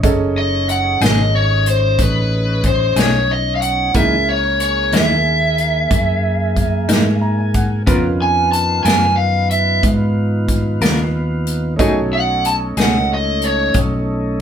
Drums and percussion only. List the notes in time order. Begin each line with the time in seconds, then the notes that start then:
0.04 kick, closed hi-hat
0.69 closed hi-hat
1.01 snare, closed hi-hat
1.66 closed hi-hat
1.99 kick, closed hi-hat
2.63 kick, closed hi-hat
2.96 snare, closed hi-hat
3.62 closed hi-hat
3.94 kick, closed hi-hat
4.60 closed hi-hat
4.92 snare, closed hi-hat
5.58 closed hi-hat
5.91 kick, closed hi-hat
6.56 kick, closed hi-hat
6.89 snare, closed hi-hat
7.54 kick, closed hi-hat
7.87 kick, closed hi-hat
8.53 closed hi-hat
8.85 snare, closed hi-hat
9.51 closed hi-hat
9.83 kick, closed hi-hat
10.48 kick, closed hi-hat
10.81 snare, closed hi-hat
11.47 closed hi-hat
11.79 kick, closed hi-hat
12.45 closed hi-hat
12.77 snare, closed hi-hat
13.42 closed hi-hat
13.74 kick, closed hi-hat